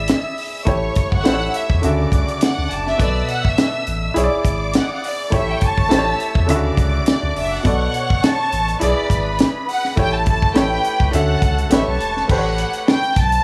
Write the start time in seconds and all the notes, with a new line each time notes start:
Already playing: G#1 E4 G#4 D5 E5 E6
0.08 snare, closed hi-hat
0.38 open hi-hat
0.65 A1 A3 E4 G4 C#5 C#6, kick, closed hi-hat
0.95 kick, closed hi-hat
1.12 G1 F#5, kick
1.24 A1 A3 E4 G4 C5 E5 E6, snare, closed hi-hat
1.33 C#5
1.54 E5, closed hi-hat
1.70 E2, kick
1.82 D2 C#3 D3 F#4 D5 E5 D6, closed hi-hat
2.12 C#2, kick, closed hi-hat
2.28 closed hi-hat
2.41 F#5, snare, closed hi-hat
2.58 D2
2.71 F#1 A5, closed hi-hat
2.87 E5, snare
2.98 B1 B2 B3 A4 D5 E5 E6, kick, closed hi-hat
3.28 F#5, closed hi-hat
3.45 E5, kick
3.58 snare, closed hi-hat
3.87 A1, closed hi-hat
4.14 B1 E4 G#4 C#5 D5 D6, closed hi-hat
4.24 D5
4.32 G#1
4.45 G#1, kick, closed hi-hat
4.73 F#5, snare, closed hi-hat
4.93 F#5
5.04 D5, open hi-hat
5.30 A1 A3 E4 G4 C#5 C#6, kick, closed hi-hat
5.35 E5
5.50 G5
5.61 A5, kick, closed hi-hat
5.78 G1, kick
5.89 A1 A3 E4 G4 C5 E5 E6, snare, closed hi-hat
5.99 C#5
6.20 closed hi-hat
6.35 E2, kick
6.47 D2 C#3 D3 E4 D5 E5 D6, closed hi-hat
6.56 F#4
6.77 C#2, kick, closed hi-hat
7.06 D5, snare, closed hi-hat
7.23 D2
7.36 F#1 E5, open hi-hat
7.54 F#5
7.63 B1 B2 B3 A4 C#5 D5 C#6, kick, closed hi-hat
7.94 closed hi-hat
8.10 kick
8.23 A5, snare, closed hi-hat
8.52 A1, closed hi-hat
8.68 closed hi-hat
8.80 B1 E4 G#4 B4 D5 B5, closed hi-hat
8.98 G#1
9.10 G#1, kick, closed hi-hat
9.39 snare, closed hi-hat
9.69 F#5, open hi-hat
9.85 snare
9.96 A1 A3 E4 G4 A4 C#5 G5 A5, kick, closed hi-hat
10.14 A5
10.26 A5, kick, closed hi-hat
10.42 kick
10.54 A1 A3 E4 G4 B4 C#5 G5 B5, snare, closed hi-hat
10.84 closed hi-hat
11.00 C#2, kick
11.11 D2 D3 C#4 F#4 A4 E5 F#5 A5, closed hi-hat
11.42 C#2, kick, closed hi-hat
11.58 closed hi-hat
11.70 A1 A3 G4 B4 C#5 E5 C#6, snare, closed hi-hat
11.88 B1 A5
12.00 E1, closed hi-hat
12.17 snare
12.28 A1 A3 G4 B4 C5 F#5, kick, crash
12.38 C#5
12.58 closed hi-hat
12.73 closed hi-hat
12.88 G5, snare
13.03 closed hi-hat
13.16 B1 A5, kick, closed hi-hat
13.32 closed hi-hat